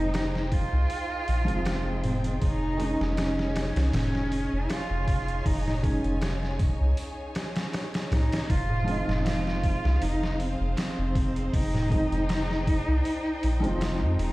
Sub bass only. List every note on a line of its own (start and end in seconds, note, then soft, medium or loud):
0.00 0.68 F1 loud
0.73 0.88 C2 medium
1.28 1.51 A#1 medium
1.49 2.39 F1 medium
2.42 2.96 F1 loud
3.00 3.72 F1 loud
3.76 3.91 C2 medium
3.93 4.48 F1 medium
4.52 4.68 F1 loud
4.90 5.42 F1 medium
5.46 6.00 F1 loud
6.04 6.76 F1 loud
6.80 6.95 C2 medium
8.12 8.29 C2 medium
8.50 9.04 F1 medium
9.08 9.80 F1 loud
9.84 9.99 C2 loud
10.02 10.56 F1 medium
10.60 10.75 F1 loud
10.98 11.50 F1 loud
11.53 12.08 F1 loud
12.12 12.84 F1 loud
12.88 13.03 C2 medium
13.43 13.65 A#1 loud
13.64 14.03 F1 medium
14.01 14.17 F2 medium
14.19 14.33 D#1 medium